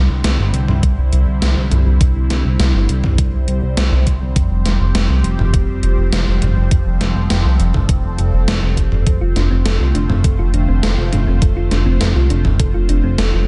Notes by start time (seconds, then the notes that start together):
Already playing: D3 G3 C4 E4 C5
0.10 C2
0.24 C2, snare, closed hi-hat
0.39 G1
0.54 C2, closed hi-hat
0.68 C2, mid tom
0.83 C2, kick, closed hi-hat
0.98 C2
1.13 C2, closed hi-hat
1.27 C2
1.42 C2, snare, closed hi-hat
1.57 C2
1.71 C2, closed hi-hat, mid tom
1.86 C2
2.01 C2, kick, closed hi-hat
2.16 C2
2.30 C2, snare, closed hi-hat
2.45 C2
2.60 C2, snare, closed hi-hat
2.74 G1
2.89 C2, closed hi-hat
3.04 C2, kick, mid tom
3.18 C2, kick, closed hi-hat
3.33 C2
3.48 C2, closed hi-hat
3.63 C2
3.77 C2, snare, closed hi-hat
3.92 C2
4.07 C2, kick, closed hi-hat
4.21 C2
4.36 F1 F3 G4, kick, closed hi-hat
4.51 F1
4.66 F1, snare, closed hi-hat
4.80 F1
4.95 F1, snare, closed hi-hat
5.10 C2
5.24 F1, closed hi-hat
5.39 F1, mid tom
5.54 F1, kick, closed hi-hat
5.68 F1
5.83 F1, closed hi-hat
5.98 F1
6.12 F1, snare, closed hi-hat
6.27 F1
6.42 F1, closed hi-hat, mid tom
6.57 F1
6.71 F1 A4, kick, closed hi-hat
6.86 F1
7.01 F1, snare, closed hi-hat
7.15 F1
7.30 F1, snare, closed hi-hat
7.45 C2
7.60 F1, closed hi-hat
7.74 F1, kick, mid tom
7.89 F1, kick, closed hi-hat
8.04 F1
8.18 F1, closed hi-hat
8.33 F1
8.48 F1, snare, closed hi-hat
8.62 F1
8.77 F1, kick, closed hi-hat
8.92 F1, mid tom
9.06 F1 D3 A3 F4 A4 C5, kick, closed hi-hat
9.21 F1 F4
9.36 F1 D4, snare, closed hi-hat
9.51 F1 C4
9.65 F1 A4, snare, closed hi-hat
9.80 C2 F4
9.95 F1 D4, closed hi-hat
10.10 F1 C4, mid tom
10.24 F1 A4, kick, closed hi-hat
10.39 F1 F4
10.54 F1 D4, closed hi-hat
10.68 F1 C4
10.83 F1 A4, snare, closed hi-hat
10.98 F1 F4
11.12 F1 D4, closed hi-hat, mid tom
11.27 F1 C4
11.42 F1 A4, kick, closed hi-hat
11.57 F1 F4
11.71 F1 D4, snare, closed hi-hat
11.86 F1 C4
12.01 F1 A4, snare, closed hi-hat
12.15 C2 F4
12.30 F1 D4, closed hi-hat
12.45 F1 C4, kick, mid tom
12.60 F1 A4, kick, closed hi-hat
12.74 F1 F4
12.89 F1 D4, closed hi-hat
13.04 F1 C4
13.18 F1 A4, snare, closed hi-hat
13.33 F1 F4